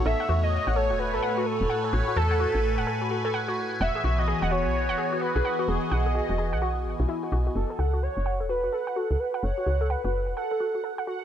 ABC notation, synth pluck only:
X:1
M:4/4
L:1/16
Q:"Swing 16ths" 1/4=128
K:F#dor
V:1 name="Synth pluck"
A f F z2 f A F F A f F z2 f A | F F A f F z2 f A F F A f F z2 | f G F F G f F z2 f G F F G f F | z2 f G F F G f F z2 E E F F F |
F A f F z2 f A F F A f F z2 f | A F F A f F z2 f A F F A f F z |]